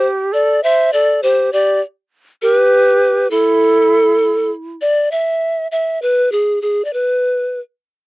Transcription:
0, 0, Header, 1, 3, 480
1, 0, Start_track
1, 0, Key_signature, 0, "minor"
1, 0, Tempo, 598802
1, 1219, Time_signature, 6, 3, 24, 8
1, 6468, End_track
2, 0, Start_track
2, 0, Title_t, "Pan flute"
2, 0, Program_c, 0, 75
2, 269, Note_on_c, 0, 74, 87
2, 505, Note_off_c, 0, 74, 0
2, 509, Note_on_c, 0, 76, 101
2, 728, Note_off_c, 0, 76, 0
2, 745, Note_on_c, 0, 74, 95
2, 965, Note_off_c, 0, 74, 0
2, 986, Note_on_c, 0, 72, 89
2, 1206, Note_off_c, 0, 72, 0
2, 1225, Note_on_c, 0, 74, 88
2, 1445, Note_off_c, 0, 74, 0
2, 1939, Note_on_c, 0, 70, 112
2, 2060, Note_off_c, 0, 70, 0
2, 2060, Note_on_c, 0, 71, 112
2, 2625, Note_off_c, 0, 71, 0
2, 2651, Note_on_c, 0, 69, 116
2, 3616, Note_off_c, 0, 69, 0
2, 3858, Note_on_c, 0, 74, 91
2, 4081, Note_off_c, 0, 74, 0
2, 4100, Note_on_c, 0, 76, 88
2, 4547, Note_off_c, 0, 76, 0
2, 4582, Note_on_c, 0, 76, 84
2, 4803, Note_off_c, 0, 76, 0
2, 4826, Note_on_c, 0, 71, 79
2, 5065, Note_on_c, 0, 68, 68
2, 5077, Note_off_c, 0, 71, 0
2, 5302, Note_off_c, 0, 68, 0
2, 5306, Note_on_c, 0, 68, 68
2, 5488, Note_on_c, 0, 74, 52
2, 5500, Note_off_c, 0, 68, 0
2, 5557, Note_on_c, 0, 71, 72
2, 5569, Note_off_c, 0, 74, 0
2, 6090, Note_off_c, 0, 71, 0
2, 6468, End_track
3, 0, Start_track
3, 0, Title_t, "Quena"
3, 0, Program_c, 1, 77
3, 0, Note_on_c, 1, 67, 83
3, 259, Note_on_c, 1, 69, 85
3, 272, Note_off_c, 1, 67, 0
3, 500, Note_off_c, 1, 69, 0
3, 509, Note_on_c, 1, 72, 90
3, 728, Note_off_c, 1, 72, 0
3, 753, Note_on_c, 1, 69, 73
3, 970, Note_off_c, 1, 69, 0
3, 988, Note_on_c, 1, 67, 69
3, 1207, Note_off_c, 1, 67, 0
3, 1224, Note_on_c, 1, 67, 72
3, 1444, Note_off_c, 1, 67, 0
3, 1941, Note_on_c, 1, 67, 97
3, 2626, Note_off_c, 1, 67, 0
3, 2652, Note_on_c, 1, 64, 97
3, 3822, Note_off_c, 1, 64, 0
3, 6468, End_track
0, 0, End_of_file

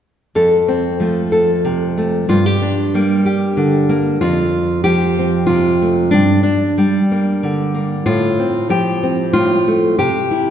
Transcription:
0, 0, Header, 1, 2, 480
1, 0, Start_track
1, 0, Key_signature, -1, "major"
1, 0, Tempo, 642398
1, 260, Time_signature, 3, 2, 24, 8
1, 7847, End_track
2, 0, Start_track
2, 0, Title_t, "Nylon-string guitar"
2, 0, Program_c, 0, 24
2, 263, Note_on_c, 0, 41, 49
2, 267, Note_on_c, 0, 69, 47
2, 511, Note_on_c, 0, 60, 40
2, 746, Note_on_c, 0, 53, 40
2, 752, Note_on_c, 0, 57, 41
2, 977, Note_off_c, 0, 69, 0
2, 986, Note_on_c, 0, 69, 41
2, 1231, Note_on_c, 0, 48, 46
2, 1466, Note_off_c, 0, 57, 0
2, 1475, Note_on_c, 0, 57, 41
2, 1677, Note_off_c, 0, 69, 0
2, 1678, Note_off_c, 0, 53, 0
2, 1679, Note_off_c, 0, 48, 0
2, 1681, Note_off_c, 0, 57, 0
2, 1706, Note_off_c, 0, 41, 0
2, 1709, Note_on_c, 0, 43, 57
2, 1710, Note_off_c, 0, 60, 0
2, 1713, Note_on_c, 0, 65, 50
2, 1838, Note_off_c, 0, 65, 0
2, 1838, Note_on_c, 0, 67, 43
2, 1957, Note_on_c, 0, 62, 42
2, 2200, Note_on_c, 0, 55, 41
2, 2203, Note_on_c, 0, 58, 43
2, 2425, Note_off_c, 0, 67, 0
2, 2434, Note_on_c, 0, 67, 45
2, 2667, Note_on_c, 0, 50, 45
2, 2899, Note_off_c, 0, 58, 0
2, 2908, Note_on_c, 0, 58, 45
2, 3117, Note_off_c, 0, 43, 0
2, 3118, Note_off_c, 0, 50, 0
2, 3118, Note_off_c, 0, 58, 0
2, 3121, Note_off_c, 0, 62, 0
2, 3121, Note_off_c, 0, 67, 0
2, 3124, Note_off_c, 0, 55, 0
2, 3145, Note_on_c, 0, 65, 81
2, 3152, Note_on_c, 0, 41, 59
2, 3612, Note_off_c, 0, 65, 0
2, 3615, Note_on_c, 0, 67, 77
2, 3627, Note_on_c, 0, 53, 46
2, 3874, Note_on_c, 0, 60, 33
2, 4081, Note_off_c, 0, 67, 0
2, 4084, Note_on_c, 0, 65, 73
2, 4100, Note_on_c, 0, 48, 49
2, 4346, Note_on_c, 0, 57, 38
2, 4555, Note_off_c, 0, 48, 0
2, 4558, Note_off_c, 0, 53, 0
2, 4558, Note_off_c, 0, 57, 0
2, 4562, Note_off_c, 0, 60, 0
2, 4565, Note_on_c, 0, 62, 71
2, 4576, Note_off_c, 0, 65, 0
2, 4578, Note_off_c, 0, 41, 0
2, 4581, Note_on_c, 0, 43, 54
2, 4796, Note_off_c, 0, 62, 0
2, 4805, Note_on_c, 0, 62, 62
2, 5064, Note_on_c, 0, 55, 43
2, 5317, Note_on_c, 0, 58, 38
2, 5554, Note_on_c, 0, 50, 47
2, 5778, Note_off_c, 0, 58, 0
2, 5787, Note_on_c, 0, 58, 38
2, 5991, Note_off_c, 0, 43, 0
2, 5993, Note_off_c, 0, 55, 0
2, 5996, Note_off_c, 0, 58, 0
2, 5998, Note_off_c, 0, 50, 0
2, 6012, Note_off_c, 0, 62, 0
2, 6020, Note_on_c, 0, 45, 57
2, 6022, Note_on_c, 0, 65, 85
2, 6270, Note_on_c, 0, 60, 37
2, 6495, Note_on_c, 0, 53, 48
2, 6499, Note_off_c, 0, 65, 0
2, 6502, Note_on_c, 0, 67, 79
2, 6747, Note_off_c, 0, 60, 0
2, 6750, Note_on_c, 0, 60, 37
2, 6972, Note_off_c, 0, 67, 0
2, 6975, Note_on_c, 0, 65, 75
2, 6976, Note_off_c, 0, 45, 0
2, 6985, Note_on_c, 0, 45, 50
2, 7230, Note_on_c, 0, 57, 38
2, 7428, Note_off_c, 0, 53, 0
2, 7433, Note_off_c, 0, 45, 0
2, 7436, Note_off_c, 0, 57, 0
2, 7457, Note_off_c, 0, 65, 0
2, 7461, Note_on_c, 0, 67, 72
2, 7463, Note_on_c, 0, 48, 57
2, 7701, Note_off_c, 0, 60, 0
2, 7704, Note_on_c, 0, 64, 36
2, 7847, Note_off_c, 0, 48, 0
2, 7847, Note_off_c, 0, 64, 0
2, 7847, Note_off_c, 0, 67, 0
2, 7847, End_track
0, 0, End_of_file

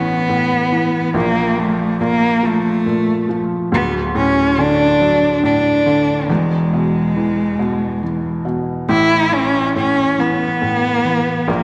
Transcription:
0, 0, Header, 1, 3, 480
1, 0, Start_track
1, 0, Tempo, 860832
1, 641, Time_signature, 6, 3, 24, 8
1, 6485, End_track
2, 0, Start_track
2, 0, Title_t, "Cello"
2, 0, Program_c, 0, 42
2, 0, Note_on_c, 0, 59, 86
2, 641, Note_off_c, 0, 59, 0
2, 644, Note_on_c, 0, 58, 97
2, 889, Note_on_c, 0, 57, 81
2, 897, Note_off_c, 0, 58, 0
2, 1123, Note_off_c, 0, 57, 0
2, 1130, Note_on_c, 0, 58, 105
2, 1369, Note_on_c, 0, 57, 88
2, 1377, Note_off_c, 0, 58, 0
2, 1902, Note_off_c, 0, 57, 0
2, 2087, Note_on_c, 0, 59, 89
2, 2192, Note_off_c, 0, 59, 0
2, 2326, Note_on_c, 0, 61, 101
2, 2562, Note_on_c, 0, 62, 109
2, 2571, Note_off_c, 0, 61, 0
2, 3035, Note_off_c, 0, 62, 0
2, 3039, Note_on_c, 0, 62, 100
2, 3517, Note_on_c, 0, 56, 75
2, 3526, Note_off_c, 0, 62, 0
2, 4719, Note_off_c, 0, 56, 0
2, 4965, Note_on_c, 0, 64, 97
2, 5208, Note_on_c, 0, 61, 100
2, 5216, Note_off_c, 0, 64, 0
2, 5443, Note_off_c, 0, 61, 0
2, 5446, Note_on_c, 0, 61, 100
2, 5687, Note_on_c, 0, 59, 82
2, 5695, Note_off_c, 0, 61, 0
2, 6401, Note_on_c, 0, 58, 75
2, 6410, Note_off_c, 0, 59, 0
2, 6485, Note_off_c, 0, 58, 0
2, 6485, End_track
3, 0, Start_track
3, 0, Title_t, "Felt piano"
3, 0, Program_c, 1, 0
3, 0, Control_c, 1, 64, 127
3, 0, Note_on_c, 1, 33, 59
3, 0, Note_on_c, 1, 45, 48
3, 0, Note_on_c, 1, 52, 52
3, 154, Note_off_c, 1, 45, 0
3, 162, Note_on_c, 1, 45, 50
3, 396, Note_off_c, 1, 52, 0
3, 404, Note_on_c, 1, 52, 58
3, 618, Note_off_c, 1, 33, 0
3, 626, Note_off_c, 1, 45, 0
3, 635, Note_off_c, 1, 52, 0
3, 636, Note_on_c, 1, 34, 68
3, 637, Note_on_c, 1, 46, 67
3, 649, Control_c, 1, 64, 0
3, 742, Control_c, 1, 64, 127
3, 882, Note_on_c, 1, 53, 54
3, 1111, Note_off_c, 1, 46, 0
3, 1119, Note_on_c, 1, 46, 56
3, 1347, Note_off_c, 1, 53, 0
3, 1356, Note_on_c, 1, 53, 52
3, 1586, Note_off_c, 1, 46, 0
3, 1595, Note_on_c, 1, 46, 47
3, 1826, Note_off_c, 1, 53, 0
3, 1835, Note_on_c, 1, 53, 56
3, 2051, Note_off_c, 1, 34, 0
3, 2060, Note_off_c, 1, 46, 0
3, 2067, Note_off_c, 1, 53, 0
3, 2074, Note_on_c, 1, 38, 69
3, 2075, Note_on_c, 1, 26, 64
3, 2082, Control_c, 1, 64, 0
3, 2196, Control_c, 1, 64, 127
3, 2313, Note_on_c, 1, 45, 56
3, 2554, Note_on_c, 1, 50, 57
3, 2793, Note_on_c, 1, 54, 52
3, 3022, Note_off_c, 1, 45, 0
3, 3030, Note_on_c, 1, 45, 52
3, 3261, Note_off_c, 1, 50, 0
3, 3269, Note_on_c, 1, 50, 56
3, 3488, Note_off_c, 1, 26, 0
3, 3488, Note_off_c, 1, 38, 0
3, 3490, Note_off_c, 1, 54, 0
3, 3496, Note_off_c, 1, 45, 0
3, 3503, Note_off_c, 1, 50, 0
3, 3510, Note_on_c, 1, 28, 60
3, 3511, Note_on_c, 1, 40, 68
3, 3518, Control_c, 1, 64, 0
3, 3615, Control_c, 1, 64, 127
3, 3754, Note_on_c, 1, 47, 51
3, 3993, Note_on_c, 1, 52, 54
3, 4225, Note_off_c, 1, 47, 0
3, 4234, Note_on_c, 1, 47, 49
3, 4469, Note_off_c, 1, 52, 0
3, 4477, Note_on_c, 1, 52, 44
3, 4704, Note_off_c, 1, 47, 0
3, 4712, Note_on_c, 1, 47, 54
3, 4935, Note_off_c, 1, 28, 0
3, 4935, Note_off_c, 1, 40, 0
3, 4945, Note_off_c, 1, 52, 0
3, 4948, Note_off_c, 1, 47, 0
3, 4956, Note_on_c, 1, 33, 64
3, 4957, Note_on_c, 1, 45, 71
3, 4963, Control_c, 1, 64, 0
3, 5059, Control_c, 1, 64, 127
3, 5199, Note_on_c, 1, 52, 54
3, 5434, Note_off_c, 1, 45, 0
3, 5442, Note_on_c, 1, 45, 51
3, 5671, Note_off_c, 1, 52, 0
3, 5679, Note_on_c, 1, 52, 53
3, 5911, Note_off_c, 1, 45, 0
3, 5919, Note_on_c, 1, 45, 49
3, 6154, Note_off_c, 1, 52, 0
3, 6162, Note_on_c, 1, 52, 54
3, 6379, Note_off_c, 1, 33, 0
3, 6386, Note_off_c, 1, 45, 0
3, 6395, Note_off_c, 1, 52, 0
3, 6400, Note_on_c, 1, 34, 70
3, 6400, Note_on_c, 1, 46, 63
3, 6410, Control_c, 1, 64, 0
3, 6485, Note_off_c, 1, 34, 0
3, 6485, Note_off_c, 1, 46, 0
3, 6485, End_track
0, 0, End_of_file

